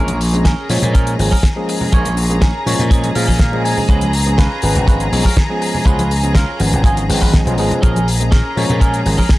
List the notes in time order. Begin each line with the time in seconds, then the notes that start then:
Already playing: A#1 F3 G#3 A#3 C#4 G#4 A#4 A#5
0.08 closed hi-hat, high conga
0.21 open hi-hat
0.33 F3 G#3 A#3 C#4 G#4, closed hi-hat
0.45 C#4 G#4 A#4, kick, snare, closed hi-hat
0.69 A#2 F3 G#3 A#3 C#4 C#5, open hi-hat, high conga
0.82 A#2, closed hi-hat, low conga
0.94 C#4 G#4 A#4, kick, closed hi-hat
1.07 closed hi-hat
1.19 G#1 F3 G#3 A#3 C#4 G#4, open hi-hat
1.31 C#4 G#4 A#4, kick, high conga
1.43 kick, snare, closed hi-hat
1.56 F3 G#3 A#3 C#4 G#4, muted clean electric guitar stroke
1.68 muted clean electric guitar stroke, open hi-hat
1.81 low conga
1.92 A#1 F3 G#3 A#3 C#4 G#4 C#5, kick, closed hi-hat
2.05 closed hi-hat, high conga
2.17 open hi-hat
2.29 F3 G#3 A#3 C#4 G#4, closed hi-hat
2.41 C#4 G#4 A#4, kick, snare, closed hi-hat
2.66 A#2 F3 G#3 A#3 C#4 C#5, open hi-hat, high conga
2.79 A#2, closed hi-hat, low conga
2.90 C#4 G#4 A#4 D#5, kick, closed hi-hat
3.04 closed hi-hat, muted conga
3.15 A#2 F3 G#3 A#3 C#4 G#4 F5, open hi-hat
3.27 C#4 G#4 A#4, kick, high conga
3.39 F5, kick, snare, closed hi-hat
3.52 F3 G#3 A#3 C#4 G#4, muted clean electric guitar stroke, muted conga
3.64 G#5, muted clean electric guitar stroke, open hi-hat
3.78 muted conga, low conga
3.88 C#2 F3 G#3 B3 C#4 F4 G#4 B4, kick, closed hi-hat
4.01 closed hi-hat, high conga
4.13 open hi-hat
4.26 F3 G#3 B3 C#4 G#4, closed hi-hat
4.38 C#4 F4 B4, kick, snare, closed hi-hat
4.62 G#1 F3 G#3 B3 C#4 B4, open hi-hat, high conga
4.75 G#1, closed hi-hat, low conga
4.87 C#4 F4 B4, kick, closed hi-hat
5.00 closed hi-hat
5.12 B1 F3 G#3 B3 C#4 G#4, open hi-hat
5.24 C#4 F4 A#4, kick, high conga
5.37 kick, snare, closed hi-hat
5.49 F3 G#3 B3 C#4 G#4, muted clean electric guitar stroke
5.60 muted clean electric guitar stroke, open hi-hat
5.75 low conga
5.85 C#2 F3 G#3 B3 C#4 F4 G#4 B4, kick, closed hi-hat
5.99 closed hi-hat, high conga
6.11 open hi-hat
6.23 F3 G#3 B3 C#4 G#4, closed hi-hat
6.34 C#4 F4 A#4, kick, snare, closed hi-hat
6.60 G#1 F3 G#3 B3 C#4, open hi-hat, high conga
6.73 G#1, closed hi-hat, low conga
6.84 C#4 F4 G#4, kick, closed hi-hat
6.97 closed hi-hat, muted conga
7.09 G#1 F3 G#3 B3 C#4 G#4, open hi-hat
7.21 C#4 F4 B4, kick, high conga
7.33 kick, snare, closed hi-hat
7.45 B1 F3 G#3 B3 C#4 F4, muted clean electric guitar stroke, closed hi-hat, muted conga
7.57 G#1 F3 G#3 B3 C#4 G#4, muted clean electric guitar stroke, open hi-hat
7.71 closed hi-hat, muted conga, low conga
7.82 A#1 F3 G#3 A#3 C#4 G#4 A#4 A#5, kick, closed hi-hat
7.96 closed hi-hat, high conga
8.08 open hi-hat
8.20 F3 G#3 A#3 C#4 G#4, closed hi-hat
8.31 C#4 G#4 A#4, kick, snare, closed hi-hat
8.56 A#2 F3 G#3 A#3 C#4 C#5, open hi-hat, high conga
8.70 A#2, closed hi-hat, low conga
8.80 C#4 G#4 A#4, kick, closed hi-hat
8.94 closed hi-hat
9.06 G#1 F3 G#3 A#3 C#4 G#4, open hi-hat
9.17 C#4 G#4 A#4, kick, high conga
9.29 kick, snare, closed hi-hat